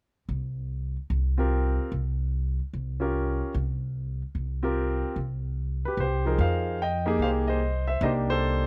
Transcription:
0.29 upright bass C2
1.10 upright bass C2
1.38 grand piano C4 F4 G4 A#4
1.92 upright bass C2
2.73 upright bass C2
3.00 grand piano C#4 F4 G4 A#4
3.54 upright bass C2
4.35 upright bass C2
4.63 grand piano C4 F4 G4 A#4
5.16 upright bass C2
5.85 grand piano G4 B4
5.97 upright bass C2, grand piano C5
6.02 grand piano G4
6.25 grand piano F3 D#4 G4 G#4 A#4
6.38 upright bass F2, grand piano F5
6.43 grand piano C5
6.82 grand piano D#5 G5
7.06 grand piano A#3 D#4 G4 G#4
7.19 upright bass C2, grand piano F5
7.24 grand piano C5
7.48 grand piano C5 D#5
7.88 grand piano C5 E5
8.01 upright bass C2, grand piano A#3 D4 D#4 G4 D#5
8.05 grand piano C5
8.30 grand piano A4 C5

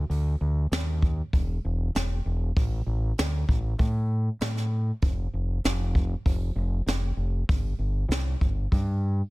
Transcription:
0.10 fingered electric bass D2, open hi-hat
0.41 fingered electric bass D2
0.72 fingered electric bass D#2, snare, open hi-hat
1.02 kick
1.33 fingered electric bass E1, kick, open hi-hat
1.65 fingered electric bass E1
1.95 fingered electric bass E1, snare, open hi-hat
2.25 fingered electric bass E1
2.57 fingered electric bass A1, kick, open hi-hat
2.86 fingered electric bass A1
3.18 fingered electric bass D2, snare, open hi-hat
3.49 fingered electric bass A1, kick
3.79 fingered electric bass A2, kick, open hi-hat
4.41 fingered electric bass A2, snare, open hi-hat
4.57 snare
5.02 fingered electric bass F1, kick, open hi-hat
5.34 fingered electric bass F1
5.64 fingered electric bass F1, snare, open hi-hat
5.95 kick
6.26 fingered electric bass F1, kick, open hi-hat
6.56 fingered electric bass F1
6.86 fingered electric bass F1, snare, open hi-hat
7.17 fingered electric bass F1
7.49 fingered electric bass G1, kick, open hi-hat
7.79 fingered electric bass G1
8.09 fingered electric bass C2, snare, open hi-hat
8.41 fingered electric bass G1, kick
8.72 fingered electric bass G2, kick, open hi-hat

